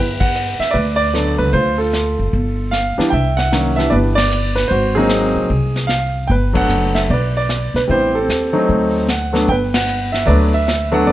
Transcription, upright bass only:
Already playing: G1
0.59 muted upright bass stroke
0.74 D2
1.39 C#2
1.54 D2
2.19 F#1
2.33 G1
2.99 muted upright bass stroke
3.13 C2
3.92 G1
4.70 G#1
5.36 A1
5.50 C2
6.30 G1
6.69 F#1
7.10 B1
7.74 B1
7.89 A1
8.28 D#2
8.69 D2
9.48 G1
10.28 D2
11.07 G1

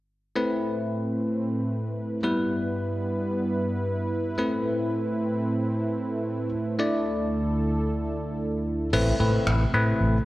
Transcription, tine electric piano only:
0.36 A3 C4 E4 B4
2.23 G3 B3 E4 B4
4.38 A3 C4 E4 B4
6.79 A3 D4 E4 D5
8.93 A3 C4 E4 B4
9.20 A3 C4 E4 B4
9.74 A3 C4 E4 B4

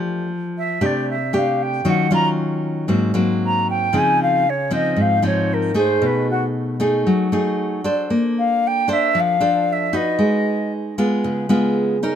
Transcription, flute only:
0.58 E5
0.86 D5
1.10 E5
1.38 F5
1.63 G5
1.90 F#5
2.14 A#5
3.45 A#5
3.70 G5
3.98 G#5
4.22 F5
4.50 C#5
4.74 D#5
5.01 F5
5.26 C#5
5.54 A#4
5.77 C5
6.06 B4
6.30 F#4
8.39 F5
8.67 G5
8.92 E5
9.20 F5
9.73 E5
9.96 D#5

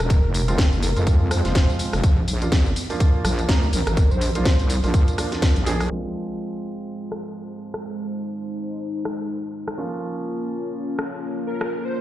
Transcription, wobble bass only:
0.00 D#1
0.24 F1
0.72 F#1
0.96 F2
1.45 F1
1.93 F1
2.04 A#1
2.28 A#1
3.24 A#1
3.49 D2
3.73 A#1
3.87 G#1
4.11 A#1
4.59 C2
4.84 A#1
5.56 A#1

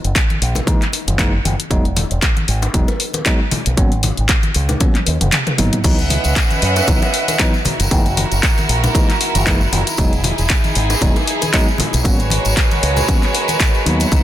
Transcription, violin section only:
5.84 C#4 B4 D#5 E5 F#5
7.66 E4 F#4 A#4
9.99 D#4 G#4
12.06 G#3 F#4 A#4 B4 C#5
14.11 C#4 D#5 E5 F#5

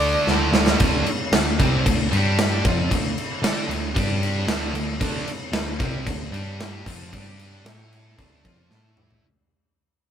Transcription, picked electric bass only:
Already playing: D2
0.27 D2
0.52 D2
0.80 D2
1.05 muted picked electric bass stroke
1.32 D2
1.60 C2
1.86 D2
2.12 G2
2.65 F2
2.91 D2
3.42 D3
3.68 D2
3.96 G2
4.47 D2
4.74 D2
5.01 D2
5.26 muted picked electric bass stroke
5.52 D2
5.79 C2
6.06 D2
6.31 G2
6.86 F2
7.13 G2
7.65 A2
8.18 D2
8.44 F2
8.70 A2

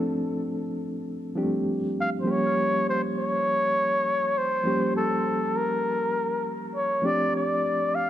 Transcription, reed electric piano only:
Already playing: F3 A3 C4 D4 A4
1.36 F3 G3 C4 D4 G4
1.43 A3
2.24 F3 G3 A#3 C#4 G4
4.64 F3 G3 A#3 C#4 G4
7.02 F3 A3 C4 D4 G4

